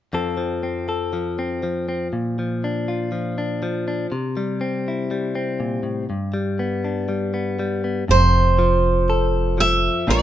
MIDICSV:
0, 0, Header, 1, 4, 480
1, 0, Start_track
1, 0, Key_signature, -1, "major"
1, 0, Tempo, 995025
1, 65, Time_signature, 4, 2, 24, 8
1, 4931, End_track
2, 0, Start_track
2, 0, Title_t, "Steel-string acoustic guitar"
2, 0, Program_c, 0, 25
2, 3911, Note_on_c, 0, 72, 76
2, 4631, Note_off_c, 0, 72, 0
2, 4633, Note_on_c, 0, 76, 84
2, 4854, Note_off_c, 0, 76, 0
2, 4874, Note_on_c, 0, 74, 72
2, 4931, Note_off_c, 0, 74, 0
2, 4931, End_track
3, 0, Start_track
3, 0, Title_t, "Clean electric guitar"
3, 0, Program_c, 1, 27
3, 63, Note_on_c, 1, 41, 50
3, 67, Note_on_c, 1, 53, 44
3, 69, Note_on_c, 1, 60, 35
3, 70, Note_on_c, 1, 69, 50
3, 175, Note_off_c, 1, 53, 0
3, 181, Note_on_c, 1, 53, 41
3, 299, Note_off_c, 1, 60, 0
3, 305, Note_on_c, 1, 60, 38
3, 422, Note_off_c, 1, 69, 0
3, 428, Note_on_c, 1, 69, 42
3, 540, Note_off_c, 1, 53, 0
3, 546, Note_on_c, 1, 53, 47
3, 664, Note_off_c, 1, 60, 0
3, 669, Note_on_c, 1, 60, 46
3, 782, Note_off_c, 1, 53, 0
3, 787, Note_on_c, 1, 53, 46
3, 904, Note_off_c, 1, 60, 0
3, 910, Note_on_c, 1, 60, 42
3, 1000, Note_off_c, 1, 69, 0
3, 1001, Note_off_c, 1, 60, 0
3, 1024, Note_off_c, 1, 41, 0
3, 1026, Note_on_c, 1, 46, 51
3, 1147, Note_off_c, 1, 53, 0
3, 1152, Note_on_c, 1, 53, 41
3, 1274, Note_on_c, 1, 62, 46
3, 1390, Note_on_c, 1, 65, 38
3, 1499, Note_off_c, 1, 53, 0
3, 1504, Note_on_c, 1, 53, 43
3, 1625, Note_off_c, 1, 62, 0
3, 1631, Note_on_c, 1, 62, 46
3, 1743, Note_off_c, 1, 53, 0
3, 1749, Note_on_c, 1, 53, 51
3, 1864, Note_off_c, 1, 62, 0
3, 1870, Note_on_c, 1, 62, 43
3, 1958, Note_off_c, 1, 46, 0
3, 1960, Note_off_c, 1, 65, 0
3, 1961, Note_off_c, 1, 62, 0
3, 1986, Note_on_c, 1, 48, 55
3, 1989, Note_off_c, 1, 53, 0
3, 2107, Note_on_c, 1, 55, 50
3, 2224, Note_on_c, 1, 60, 48
3, 2354, Note_on_c, 1, 64, 39
3, 2460, Note_off_c, 1, 55, 0
3, 2465, Note_on_c, 1, 55, 47
3, 2577, Note_off_c, 1, 60, 0
3, 2583, Note_on_c, 1, 60, 49
3, 2701, Note_on_c, 1, 46, 42
3, 2811, Note_off_c, 1, 46, 0
3, 2813, Note_on_c, 1, 45, 46
3, 2914, Note_off_c, 1, 60, 0
3, 2915, Note_off_c, 1, 55, 0
3, 2919, Note_off_c, 1, 64, 0
3, 2939, Note_off_c, 1, 45, 0
3, 2941, Note_on_c, 1, 43, 51
3, 2944, Note_off_c, 1, 48, 0
3, 3056, Note_on_c, 1, 55, 40
3, 3181, Note_on_c, 1, 59, 50
3, 3302, Note_on_c, 1, 62, 41
3, 3413, Note_off_c, 1, 55, 0
3, 3418, Note_on_c, 1, 55, 46
3, 3534, Note_off_c, 1, 59, 0
3, 3540, Note_on_c, 1, 59, 42
3, 3658, Note_off_c, 1, 55, 0
3, 3663, Note_on_c, 1, 55, 44
3, 3777, Note_off_c, 1, 59, 0
3, 3783, Note_on_c, 1, 59, 37
3, 3876, Note_off_c, 1, 43, 0
3, 3876, Note_off_c, 1, 55, 0
3, 3876, Note_off_c, 1, 59, 0
3, 3876, Note_off_c, 1, 62, 0
3, 3899, Note_on_c, 1, 41, 53
3, 4142, Note_on_c, 1, 53, 51
3, 4388, Note_on_c, 1, 69, 53
3, 4616, Note_off_c, 1, 53, 0
3, 4621, Note_on_c, 1, 53, 46
3, 4840, Note_off_c, 1, 69, 0
3, 4853, Note_off_c, 1, 53, 0
3, 4857, Note_off_c, 1, 41, 0
3, 4859, Note_on_c, 1, 46, 58
3, 4861, Note_on_c, 1, 53, 39
3, 4864, Note_on_c, 1, 62, 42
3, 4867, Note_on_c, 1, 65, 45
3, 4871, Note_on_c, 1, 70, 55
3, 4931, Note_off_c, 1, 46, 0
3, 4931, Note_off_c, 1, 53, 0
3, 4931, Note_off_c, 1, 62, 0
3, 4931, Note_off_c, 1, 65, 0
3, 4931, Note_off_c, 1, 70, 0
3, 4931, End_track
4, 0, Start_track
4, 0, Title_t, "Upright bass"
4, 0, Program_c, 2, 32
4, 3903, Note_on_c, 2, 29, 76
4, 4760, Note_off_c, 2, 29, 0
4, 4862, Note_on_c, 2, 34, 87
4, 4931, Note_off_c, 2, 34, 0
4, 4931, End_track
0, 0, End_of_file